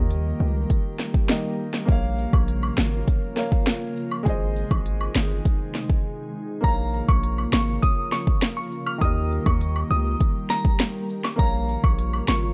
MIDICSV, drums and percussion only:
0, 0, Header, 1, 2, 480
1, 0, Start_track
1, 0, Tempo, 594059
1, 1524, Time_signature, 4, 2, 24, 8
1, 10128, End_track
2, 0, Start_track
2, 0, Title_t, "Drums"
2, 85, Note_on_c, 9, 42, 72
2, 166, Note_off_c, 9, 42, 0
2, 565, Note_on_c, 9, 42, 85
2, 566, Note_on_c, 9, 36, 90
2, 645, Note_off_c, 9, 42, 0
2, 647, Note_off_c, 9, 36, 0
2, 803, Note_on_c, 9, 38, 62
2, 884, Note_off_c, 9, 38, 0
2, 923, Note_on_c, 9, 36, 92
2, 1004, Note_off_c, 9, 36, 0
2, 1044, Note_on_c, 9, 42, 74
2, 1045, Note_on_c, 9, 38, 118
2, 1125, Note_off_c, 9, 38, 0
2, 1125, Note_off_c, 9, 42, 0
2, 1405, Note_on_c, 9, 38, 65
2, 1485, Note_off_c, 9, 38, 0
2, 1523, Note_on_c, 9, 42, 78
2, 1524, Note_on_c, 9, 36, 117
2, 1604, Note_off_c, 9, 36, 0
2, 1604, Note_off_c, 9, 42, 0
2, 1763, Note_on_c, 9, 69, 72
2, 1844, Note_off_c, 9, 69, 0
2, 1884, Note_on_c, 9, 76, 69
2, 1885, Note_on_c, 9, 36, 93
2, 1965, Note_off_c, 9, 36, 0
2, 1965, Note_off_c, 9, 76, 0
2, 2004, Note_on_c, 9, 42, 74
2, 2085, Note_off_c, 9, 42, 0
2, 2125, Note_on_c, 9, 76, 69
2, 2205, Note_off_c, 9, 76, 0
2, 2244, Note_on_c, 9, 38, 118
2, 2244, Note_on_c, 9, 69, 73
2, 2324, Note_off_c, 9, 69, 0
2, 2325, Note_off_c, 9, 38, 0
2, 2484, Note_on_c, 9, 42, 83
2, 2486, Note_on_c, 9, 36, 95
2, 2565, Note_off_c, 9, 42, 0
2, 2567, Note_off_c, 9, 36, 0
2, 2723, Note_on_c, 9, 38, 60
2, 2724, Note_on_c, 9, 69, 87
2, 2803, Note_off_c, 9, 38, 0
2, 2804, Note_off_c, 9, 69, 0
2, 2843, Note_on_c, 9, 36, 94
2, 2924, Note_off_c, 9, 36, 0
2, 2964, Note_on_c, 9, 42, 78
2, 2965, Note_on_c, 9, 38, 116
2, 3045, Note_off_c, 9, 38, 0
2, 3045, Note_off_c, 9, 42, 0
2, 3204, Note_on_c, 9, 69, 65
2, 3285, Note_off_c, 9, 69, 0
2, 3324, Note_on_c, 9, 76, 72
2, 3405, Note_off_c, 9, 76, 0
2, 3444, Note_on_c, 9, 36, 121
2, 3444, Note_on_c, 9, 42, 79
2, 3525, Note_off_c, 9, 36, 0
2, 3525, Note_off_c, 9, 42, 0
2, 3684, Note_on_c, 9, 69, 72
2, 3765, Note_off_c, 9, 69, 0
2, 3805, Note_on_c, 9, 36, 102
2, 3805, Note_on_c, 9, 76, 71
2, 3886, Note_off_c, 9, 36, 0
2, 3886, Note_off_c, 9, 76, 0
2, 3925, Note_on_c, 9, 42, 78
2, 4006, Note_off_c, 9, 42, 0
2, 4045, Note_on_c, 9, 76, 72
2, 4126, Note_off_c, 9, 76, 0
2, 4165, Note_on_c, 9, 38, 114
2, 4165, Note_on_c, 9, 69, 72
2, 4245, Note_off_c, 9, 69, 0
2, 4246, Note_off_c, 9, 38, 0
2, 4405, Note_on_c, 9, 42, 89
2, 4407, Note_on_c, 9, 36, 96
2, 4486, Note_off_c, 9, 42, 0
2, 4487, Note_off_c, 9, 36, 0
2, 4644, Note_on_c, 9, 38, 61
2, 4644, Note_on_c, 9, 69, 87
2, 4724, Note_off_c, 9, 38, 0
2, 4725, Note_off_c, 9, 69, 0
2, 4764, Note_on_c, 9, 36, 92
2, 4844, Note_off_c, 9, 36, 0
2, 5364, Note_on_c, 9, 36, 116
2, 5365, Note_on_c, 9, 42, 76
2, 5445, Note_off_c, 9, 36, 0
2, 5446, Note_off_c, 9, 42, 0
2, 5605, Note_on_c, 9, 69, 72
2, 5685, Note_off_c, 9, 69, 0
2, 5725, Note_on_c, 9, 36, 99
2, 5725, Note_on_c, 9, 76, 72
2, 5806, Note_off_c, 9, 36, 0
2, 5806, Note_off_c, 9, 76, 0
2, 5845, Note_on_c, 9, 42, 81
2, 5926, Note_off_c, 9, 42, 0
2, 5965, Note_on_c, 9, 76, 72
2, 6046, Note_off_c, 9, 76, 0
2, 6084, Note_on_c, 9, 69, 78
2, 6085, Note_on_c, 9, 38, 119
2, 6165, Note_off_c, 9, 69, 0
2, 6166, Note_off_c, 9, 38, 0
2, 6325, Note_on_c, 9, 42, 91
2, 6326, Note_on_c, 9, 36, 99
2, 6406, Note_off_c, 9, 42, 0
2, 6407, Note_off_c, 9, 36, 0
2, 6563, Note_on_c, 9, 38, 67
2, 6564, Note_on_c, 9, 69, 82
2, 6644, Note_off_c, 9, 38, 0
2, 6645, Note_off_c, 9, 69, 0
2, 6683, Note_on_c, 9, 36, 94
2, 6764, Note_off_c, 9, 36, 0
2, 6805, Note_on_c, 9, 38, 115
2, 6805, Note_on_c, 9, 42, 74
2, 6886, Note_off_c, 9, 38, 0
2, 6886, Note_off_c, 9, 42, 0
2, 7044, Note_on_c, 9, 69, 69
2, 7125, Note_off_c, 9, 69, 0
2, 7164, Note_on_c, 9, 76, 73
2, 7245, Note_off_c, 9, 76, 0
2, 7284, Note_on_c, 9, 36, 122
2, 7284, Note_on_c, 9, 42, 76
2, 7365, Note_off_c, 9, 36, 0
2, 7365, Note_off_c, 9, 42, 0
2, 7524, Note_on_c, 9, 69, 74
2, 7605, Note_off_c, 9, 69, 0
2, 7644, Note_on_c, 9, 76, 73
2, 7645, Note_on_c, 9, 36, 103
2, 7725, Note_off_c, 9, 76, 0
2, 7726, Note_off_c, 9, 36, 0
2, 7765, Note_on_c, 9, 42, 77
2, 7846, Note_off_c, 9, 42, 0
2, 7885, Note_on_c, 9, 76, 73
2, 7966, Note_off_c, 9, 76, 0
2, 8004, Note_on_c, 9, 69, 74
2, 8085, Note_off_c, 9, 69, 0
2, 8245, Note_on_c, 9, 42, 88
2, 8246, Note_on_c, 9, 36, 98
2, 8325, Note_off_c, 9, 42, 0
2, 8327, Note_off_c, 9, 36, 0
2, 8483, Note_on_c, 9, 38, 66
2, 8484, Note_on_c, 9, 69, 87
2, 8564, Note_off_c, 9, 38, 0
2, 8565, Note_off_c, 9, 69, 0
2, 8603, Note_on_c, 9, 36, 97
2, 8684, Note_off_c, 9, 36, 0
2, 8724, Note_on_c, 9, 42, 79
2, 8725, Note_on_c, 9, 38, 121
2, 8805, Note_off_c, 9, 38, 0
2, 8805, Note_off_c, 9, 42, 0
2, 8964, Note_on_c, 9, 69, 69
2, 9045, Note_off_c, 9, 69, 0
2, 9083, Note_on_c, 9, 76, 72
2, 9085, Note_on_c, 9, 38, 65
2, 9164, Note_off_c, 9, 76, 0
2, 9166, Note_off_c, 9, 38, 0
2, 9204, Note_on_c, 9, 36, 120
2, 9204, Note_on_c, 9, 42, 81
2, 9285, Note_off_c, 9, 36, 0
2, 9285, Note_off_c, 9, 42, 0
2, 9444, Note_on_c, 9, 69, 72
2, 9525, Note_off_c, 9, 69, 0
2, 9564, Note_on_c, 9, 76, 76
2, 9565, Note_on_c, 9, 36, 100
2, 9645, Note_off_c, 9, 76, 0
2, 9646, Note_off_c, 9, 36, 0
2, 9685, Note_on_c, 9, 42, 79
2, 9765, Note_off_c, 9, 42, 0
2, 9805, Note_on_c, 9, 76, 73
2, 9885, Note_off_c, 9, 76, 0
2, 9923, Note_on_c, 9, 69, 76
2, 9925, Note_on_c, 9, 38, 119
2, 10004, Note_off_c, 9, 69, 0
2, 10005, Note_off_c, 9, 38, 0
2, 10128, End_track
0, 0, End_of_file